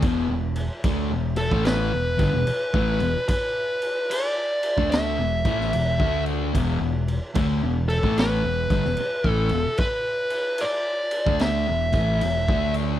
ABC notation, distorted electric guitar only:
X:1
M:4/4
L:1/16
Q:"Swing" 1/4=74
K:Clyd
V:1 name="Distorted electric guitar" clef=bass
[E,,B,,] [E,,B,,]2 z [D,A,] [E,,B,,]2 [A,,E,A,]2 [E,,B,,] [G,,D,] [E,,B,,] z [A,,E,] [E,,B,,] z | z6 z [D,A,D]2 [E,,B,,] [A,,E,A,]2 [E,,B,,] [D,A,D]3 | [E,,B,,] [E,,B,,]2 z [D,A,] [E,,B,,]2 [A,,E,A,]2 [E,,B,,] [G,,D,] [E,,B,,] z [A,,E,] [E,,B,,] z | z6 z [D,A,D]2 [E,,B,,] [A,,E,A,]2 [E,,B,,] [D,A,D]3 |]